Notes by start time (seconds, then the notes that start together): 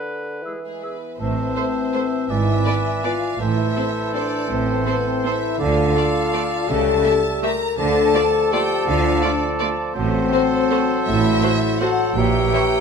Already playing: D3 B4
0.43 E3 G#3 E4 G#4 E6
0.65 G#3 G#4
0.83 G#3 B3 E4 G#4 B4 E6
1.19 A1 A2 E3 C4 C5 E5 A5
1.55 A3 C5
1.93 A3 C5
2.29 G#1 G#2 E4 B4 D5 E5 G#5
2.66 B3 B4 D5
3.03 B3 F4 B4 D5 F5
3.39 A1 A2 E3 E4 A4 C5 E5 A5
3.76 C4 A4 C5
4.13 C4 D4 A4 C5 D5
4.49 A1 A2 C4 C5
4.86 B3 C4 A4 B4 C5
5.06 C4 C5
5.24 C4 E4 A4 C5 E5
5.59 D2 D3 F4 A4 D5 F5 A5
5.95 A3 A4 D5
6.33 A3 A4 D5
6.68 C#2 C#3 G3 A4 E5 A5
7.04 A3 G4 E5
7.43 A3 G4 A#4 E5 A#5
7.77 D2 D3 F3 A4 D5 A5
8.14 A3 F4 D5
8.51 A3 F4 G4 D5 G5
8.87 D2 D3 F4 F5
9.22 A3 D4 F4 D5
9.59 A3 F4 D5
9.94 A1 A2 F#3 C4 A4 C5 A5
10.32 A3 F#4 C5
10.70 A3 F#4 C5
11.06 A1 A2 E4 E5
11.42 A3 F#4 C5
11.80 F#3 A3 F#4 A4 C5 F#5 A5
12.16 A#1 A#2 E3 G4 C#5 E5 G5 A#5
12.53 E3 E4 C#5